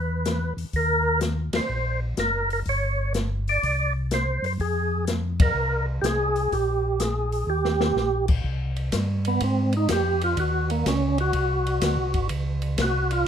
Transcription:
0.00 0.54 E2 medium
0.00 0.53 B4 medium
0.25 snare medium
0.25 closed hi-hat soft
0.57 0.65 E2 soft
0.57 open hi-hat soft
0.73 1.50 D#2 medium
0.73 1.20 A#4 loud
0.73 kick soft
0.73 open hi-hat soft
1.21 snare medium
1.21 closed hi-hat soft
1.53 1.61 D#2 soft
1.53 2.00 C5 medium
1.53 snare medium
1.53 ride medium
1.69 2.14 A#1 medium
2.17 2.63 F#1 medium
2.17 2.49 A#4 medium
2.17 snare medium
2.17 closed hi-hat soft
2.50 2.60 A#4 medium
2.50 open hi-hat soft
2.66 3.59 G1 medium
2.66 3.13 C#5 medium
2.66 kick soft
2.66 open hi-hat soft
3.14 snare medium
3.14 closed hi-hat soft
3.48 3.93 D5 loud
3.48 open hi-hat soft
3.63 4.40 C2 medium
3.63 kick soft
3.63 open hi-hat soft
4.11 4.45 C5 loud
4.11 snare medium
4.11 closed hi-hat soft
4.42 4.58 F#2 medium
4.42 4.53 C5 loud
4.42 open hi-hat soft
4.59 5.52 F2 medium
4.59 5.05 G#4 medium
4.59 kick soft
4.59 open hi-hat soft
5.07 snare medium
5.07 closed hi-hat medium
5.40 5.86 A#4 loud
5.40 kick medium
5.40 ride medium
5.55 6.00 C2 medium
6.02 6.48 C2 medium
6.02 6.05 G4 medium
6.02 snare medium
6.02 closed hi-hat medium
6.06 6.54 G#4 loud
6.36 open hi-hat soft
6.52 7.44 A#1 medium
6.52 7.02 G4 medium
6.52 kick soft
6.52 open hi-hat soft
7.00 7.50 G#4 medium
7.00 snare medium
7.00 closed hi-hat medium
7.32 open hi-hat soft
7.47 7.93 D#2 medium
7.47 8.26 G4 medium
7.65 snare medium
7.81 snare medium
7.96 8.41 A#1 medium
7.96 snare soft
8.28 kick medium
8.28 crash medium
8.44 8.91 C2 medium
8.44 kick soft
8.76 ride soft
8.92 9.40 G2 medium
8.92 kick soft
8.92 snare medium
8.92 hi-hat pedal medium
8.92 ride medium
9.25 9.42 B3 medium
9.25 ride soft
9.40 9.88 G#2 medium
9.40 9.74 C4 medium
9.40 kick soft
9.40 ride medium
9.73 ride soft
9.77 9.91 D#4 medium
9.89 10.36 F2 medium
9.89 10.22 G4 medium
9.89 kick soft
9.89 snare medium
9.89 hi-hat pedal medium
9.89 ride medium
10.21 10.38 F4 medium
10.21 ride soft
10.37 10.84 D#2 medium
10.37 10.70 F#4 medium
10.37 kick soft
10.37 ride medium
10.70 10.86 A#3 medium
10.70 ride soft
10.85 11.32 C#2 medium
10.85 11.18 C#4 medium
10.85 kick soft
10.85 snare medium
10.85 hi-hat pedal medium
10.85 ride medium
11.18 12.28 F#4 medium
11.18 ride soft
11.33 11.80 C2 medium
11.33 kick soft
11.33 ride medium
11.67 ride soft
11.81 11.98 D2 medium
11.81 kick soft
11.81 snare medium
11.81 hi-hat pedal medium
11.81 ride medium
11.97 12.14 C2 medium
12.13 12.29 G#1 medium
12.13 kick soft
12.13 ride soft
12.29 12.77 C#2 medium
12.29 kick soft
12.29 ride medium
12.62 ride soft
12.78 13.25 C2 medium
12.78 13.12 F#4 medium
12.78 kick soft
12.78 snare medium
12.78 hi-hat pedal medium
12.78 ride medium
13.11 13.27 F4 medium
13.11 ride soft

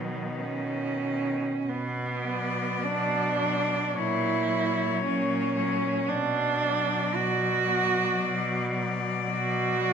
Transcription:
0.00 1.42 B2 soft
0.00 1.41 D#3 soft
0.00 0.37 F#3 soft
0.00 0.38 B3 soft
0.40 1.70 C#4 medium
1.66 2.68 B2 soft
1.66 2.85 B3 medium
2.25 3.37 F#3 soft
2.25 3.37 D5 soft
2.81 3.83 B2 soft
2.81 3.99 D4 medium
3.39 3.95 F#3 soft
3.39 3.95 D5 soft
3.96 4.91 A#2 soft
3.96 4.50 F#3 soft
3.96 5.03 E4 medium
3.96 4.50 C#5 soft
4.51 5.52 F#3 soft
4.51 5.53 C#5 soft
5.03 5.95 A#2 soft
5.03 6.10 C#4 medium
5.56 6.07 F#3 soft
5.56 6.07 C#5 soft
6.08 7.01 B2 soft
6.08 7.16 D4 medium
6.60 7.65 F#3 soft
6.60 7.65 D5 soft
7.14 8.08 B2 medium
7.14 8.75 F#4 medium
7.66 8.73 F#3 soft
7.66 8.72 D5 soft
8.21 9.16 B2 medium
8.74 9.82 F#3 soft
8.74 9.81 D5 soft
9.29 9.93 B2 medium
9.29 9.93 F#4 medium
9.83 9.93 F#3 soft
9.83 9.93 D5 soft

